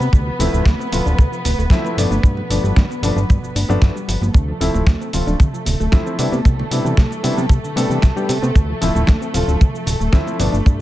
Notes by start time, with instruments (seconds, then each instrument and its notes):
Already playing: violin section B3 B4
0.00 analog synth bass C3, synth arpeggio sound B3, muted conga, high conga, shaker
0.13 analog synth bass D2, synth arpeggio sound C3, kick, shaker
0.27 synth arpeggio sound F3
0.39 analog synth bass D1, synth arpeggio sound C3, grand piano F3 A3 C4 E4, open hi-hat, shaker
0.53 analog synth bass D1, synth arpeggio sound A3, muted conga, shaker
0.65 analog synth bass D2, synth arpeggio sound D3, kick, snare, high conga, shaker
0.79 synth arpeggio sound C4, shaker
0.92 analog synth bass D1, synth arpeggio sound C3, grand piano F3 A3 C4 F4, open hi-hat, muted conga, shaker
1.06 analog synth bass D1, synth arpeggio sound D4, low conga, shaker
1.18 analog synth bass D2, synth arpeggio sound C3, kick, shaker
1.32 synth arpeggio sound F3, shaker
1.45 analog synth bass D1, synth arpeggio sound C3, open hi-hat, muted conga, high conga, shaker
1.58 analog synth bass D1, synth arpeggio sound A3, shaker
1.70 analog synth bass D2, synth arpeggio sound D3, grand piano F3 A3 C4 E4, kick, snare, shaker
1.85 synth arpeggio sound C4, muted conga, shaker
1.97 analog synth bass G1, synth arpeggio sound B2, grand piano F3 A3 B3 D4, open hi-hat, shaker
2.11 analog synth bass G1, synth arpeggio sound D4, high conga, shaker
2.23 analog synth bass G2, synth arpeggio sound B2, kick, shaker
2.37 synth arpeggio sound F3, muted conga
2.50 analog synth bass G1, synth arpeggio sound B2, grand piano F3 A3 B3 D4, open hi-hat, shaker
2.63 analog synth bass G1, synth arpeggio sound G3, shaker
2.76 analog synth bass G2, synth arpeggio sound D3, kick, snare, muted conga, high conga, shaker
2.90 synth arpeggio sound B3, shaker
3.02 analog synth bass G1, synth arpeggio sound B2, grand piano F3 A3 B3 D4, open hi-hat, shaker
3.16 analog synth bass G1, synth arpeggio sound D4, low conga, shaker
3.29 analog synth bass G2, synth arpeggio sound B2, kick, muted conga, shaker
3.42 analog synth bass G1, synth arpeggio sound F3, shaker
3.55 analog synth bass G1, synth arpeggio sound D4, open hi-hat, high conga, shaker
3.69 analog synth bass G1, grand piano F3 A3 B3 D4, synth arpeggio sound B3, muted conga, shaker
3.82 analog synth bass G2, synth arpeggio sound D3, kick, snare, shaker
3.95 synth arpeggio sound G3, shaker
4.08 analog synth bass G1, synth arpeggio sound F3, open hi-hat, shaker
4.21 analog synth bass G1, synth arpeggio sound F3, muted conga, high conga, shaker
4.34 analog synth bass D2, synth arpeggio sound C3, violin section A3 A4, kick, muted conga, shaker
4.48 synth arpeggio sound F3
4.60 analog synth bass D1, synth arpeggio sound C3, grand piano F3 A3 C4 E4, open hi-hat, shaker
4.74 analog synth bass D1, synth arpeggio sound A3, muted conga, shaker
4.86 analog synth bass D2, synth arpeggio sound D3, kick, snare, high conga, shaker
5.01 synth arpeggio sound C4, shaker
5.13 analog synth bass D1, synth arpeggio sound C3, grand piano F3 A3 C4 F4, open hi-hat, shaker
5.27 analog synth bass D1, synth arpeggio sound D4, muted conga, low conga, shaker
5.40 analog synth bass D2, synth arpeggio sound C3, kick, shaker
5.53 synth arpeggio sound F3, shaker
5.65 analog synth bass D1, synth arpeggio sound C3, open hi-hat, muted conga, high conga, shaker
5.80 analog synth bass D1, synth arpeggio sound A3, shaker
5.92 analog synth bass D2, synth arpeggio sound D3, grand piano F3 A3 C4 E4, kick, snare, shaker
6.06 synth arpeggio sound C4, shaker
6.19 synth arpeggio sound B2, analog synth bass C3, grand piano G3 B3 D4 E4, open hi-hat, muted conga, shaker
6.32 analog synth bass C3, synth arpeggio sound B3, high conga, shaker
6.45 analog synth bass C2, synth arpeggio sound B2, kick, shaker
6.59 synth arpeggio sound D3, muted conga
6.71 synth arpeggio sound B2, analog synth bass C3, grand piano G3 B3 D4 E4, open hi-hat, shaker
6.84 analog synth bass C3, synth arpeggio sound E3, shaker
6.97 analog synth bass C2, synth arpeggio sound C3, kick, snare, high conga, shaker
7.11 synth arpeggio sound G3, muted conga, shaker
7.23 synth arpeggio sound B2, analog synth bass C3, grand piano G3 B3 D4 E4, open hi-hat, shaker
7.37 analog synth bass C3, synth arpeggio sound B3, low conga, shaker
7.49 analog synth bass C2, synth arpeggio sound B2, kick, muted conga, shaker
7.63 analog synth bass C3, synth arpeggio sound D3, shaker
7.76 synth arpeggio sound B2, analog synth bass C3, grand piano G3 B3 D4 A4, open hi-hat, high conga, shaker
7.89 analog synth bass C3, synth arpeggio sound E3, shaker
8.02 analog synth bass C2, synth arpeggio sound C3, kick, snare, muted conga, shaker
8.16 grand piano G3 B3 D4 G4, synth arpeggio sound G3, shaker
8.29 synth arpeggio sound B2, analog synth bass C3, open hi-hat, shaker
8.42 analog synth bass C3, synth arpeggio sound B3, muted conga, high conga, shaker
8.55 analog synth bass D2, synth arpeggio sound C3, kick, shaker
8.69 synth arpeggio sound F3
8.81 analog synth bass D1, synth arpeggio sound C3, grand piano F3 A3 C4 E4, open hi-hat, shaker
8.95 analog synth bass D1, synth arpeggio sound A3, muted conga, shaker
9.07 analog synth bass D2, synth arpeggio sound D3, kick, snare, high conga, shaker
9.21 synth arpeggio sound C4, shaker
9.33 analog synth bass D1, synth arpeggio sound C3, grand piano F3 A3 C4 F4, open hi-hat, muted conga, shaker
9.48 analog synth bass D1, synth arpeggio sound D4, low conga, shaker
9.60 analog synth bass D2, synth arpeggio sound C3, kick, shaker
9.74 synth arpeggio sound F3, shaker
9.86 analog synth bass D1, synth arpeggio sound C3, open hi-hat, muted conga, high conga, shaker
10.00 analog synth bass D1, synth arpeggio sound A3, shaker
10.12 analog synth bass D2, synth arpeggio sound D3, grand piano F3 A3 C4 E4, kick, snare, shaker
10.26 synth arpeggio sound C4, muted conga, shaker
10.39 analog synth bass G1, synth arpeggio sound B2, grand piano F3 A3 B3 D4, open hi-hat, shaker
10.52 analog synth bass G1, synth arpeggio sound D4, high conga, shaker
10.65 analog synth bass G2, synth arpeggio sound B2, kick, shaker